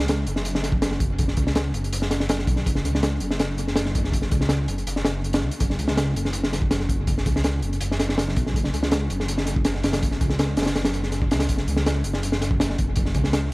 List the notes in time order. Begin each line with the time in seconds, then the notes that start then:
Already playing: C#2
0.08 snare, closed hi-hat
0.27 F#1, closed hi-hat
0.36 snare
0.45 closed hi-hat
0.55 snare
0.63 snare, closed hi-hat
0.72 kick
0.82 snare, closed hi-hat
0.91 snare
1.00 F#1, kick, closed hi-hat
1.18 kick, closed hi-hat
1.28 snare
1.37 C#2, kick, closed hi-hat
1.47 snare
1.55 snare, closed hi-hat
1.74 F#1, closed hi-hat
1.84 closed hi-hat
1.92 F#1, closed hi-hat
2.02 snare
2.11 snare, closed hi-hat
2.20 snare
2.29 snare, closed hi-hat
2.39 snare
2.47 B1, kick, closed hi-hat
2.56 snare
2.66 F#1, kick, closed hi-hat
2.75 snare
2.84 C#2, closed hi-hat
2.95 snare
3.03 snare, closed hi-hat
3.20 F#1, closed hi-hat
3.31 snare
3.39 snare, closed hi-hat
3.58 closed hi-hat
3.68 snare
3.76 snare, closed hi-hat
3.85 snare
3.95 F#1, kick, closed hi-hat
4.04 snare
4.12 kick, closed hi-hat
4.22 snare
4.31 C#2, kick, closed hi-hat
4.41 snare
4.49 snare, closed hi-hat
4.68 F#1, closed hi-hat
4.78 closed hi-hat
4.87 F#1, closed hi-hat
4.96 snare
5.05 snare, closed hi-hat
5.24 closed hi-hat
5.33 snare, closed hi-hat
5.42 C#2
5.51 closed hi-hat
5.60 F#1, kick, closed hi-hat
5.70 snare
5.79 C#2, closed hi-hat
5.88 snare
5.97 snare, closed hi-hat
6.16 F#1, closed hi-hat
6.25 snare
6.33 closed hi-hat
6.43 snare
6.53 snare, closed hi-hat
6.62 kick
6.71 snare, closed hi-hat
6.80 snare
6.89 F#1, kick, closed hi-hat
7.07 kick, closed hi-hat
7.18 snare
7.26 C#2, kick, closed hi-hat
7.36 snare
7.44 snare, closed hi-hat
7.62 F#1, closed hi-hat
7.73 closed hi-hat
7.81 F#1, closed hi-hat
7.92 snare
8.00 snare, closed hi-hat
8.09 snare
8.18 snare, closed hi-hat
8.28 snare
8.36 B1, kick, closed hi-hat
8.46 snare
8.54 F#1, kick, closed hi-hat
8.64 snare
8.73 C#2, closed hi-hat
8.83 snare
8.91 snare, closed hi-hat
9.10 F#1, closed hi-hat
9.20 snare
9.28 closed hi-hat
9.38 snare
9.46 snare, closed hi-hat
9.56 kick
9.65 snare, closed hi-hat
9.75 snare
9.83 F#1, snare, closed hi-hat
9.93 snare, closed hi-hat
10.03 kick, closed hi-hat
10.11 snare
10.21 C#2, kick, closed hi-hat
10.30 snare
10.39 snare, closed hi-hat
10.57 F#1, snare, closed hi-hat
10.62 snare, closed hi-hat
10.66 snare, closed hi-hat
10.76 F#1, snare, closed hi-hat
10.85 snare, closed hi-hat
10.94 closed hi-hat
11.03 snare
11.12 snare, closed hi-hat
11.22 kick
11.31 C#2, snare, closed hi-hat
11.39 snare, closed hi-hat
11.49 F#1, kick, closed hi-hat
11.58 snare
11.68 C#2, closed hi-hat
11.77 snare
11.86 snare, closed hi-hat
12.04 F#1, closed hi-hat
12.13 snare
12.23 closed hi-hat
12.32 snare
12.41 snare, closed hi-hat
12.51 kick
12.60 snare, closed hi-hat
12.70 snare
12.78 F#1, kick, closed hi-hat
12.96 kick, closed hi-hat
13.06 snare
13.14 C#2, kick, closed hi-hat
13.24 snare
13.33 snare, closed hi-hat